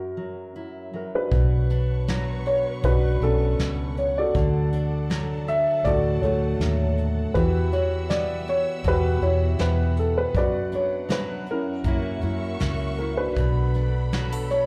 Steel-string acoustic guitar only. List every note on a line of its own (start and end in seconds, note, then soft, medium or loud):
0.00 1.32 F#2 medium
0.17 0.92 F#3 soft
0.56 1.28 E4 soft
0.94 1.28 F#3 soft
1.32 2.84 B2 medium
1.71 4.73 D4 medium
2.09 5.09 F#3 medium
2.09 5.60 F#4 medium
2.85 4.35 F#2 medium
3.24 4.31 B3 medium
3.60 3.98 B2 medium
4.35 7.30 D3 medium
4.74 5.47 D4 medium
5.10 6.60 F#3 medium
5.48 7.30 D4 medium
5.86 7.30 A2 medium
6.25 7.36 A3 medium
6.61 7.35 F#3 medium
7.36 10.35 E3 medium
7.73 9.25 F#4 medium
8.10 9.58 B3 medium
8.84 10.34 B2 medium
9.22 10.30 E4 medium
9.60 10.30 B3 medium
10.35 11.83 F#2 medium
10.73 11.47 D4 medium
11.09 11.85 F#3 medium
11.09 11.87 F#4 medium
11.84 13.37 F#2 medium
11.84 12.60 A#3 medium
11.84 13.33 C#4 medium
11.84 12.21 E4 medium
11.84 12.60 F#4 medium
12.23 12.98 E4 soft
12.61 13.32 A#3 medium
12.61 14.13 F#4 medium
13.00 13.33 E4 soft
13.38 14.66 B2 medium
13.76 14.66 D4 medium
14.14 14.66 F#3 medium
14.14 14.32 F#4 medium
14.32 14.66 A4 medium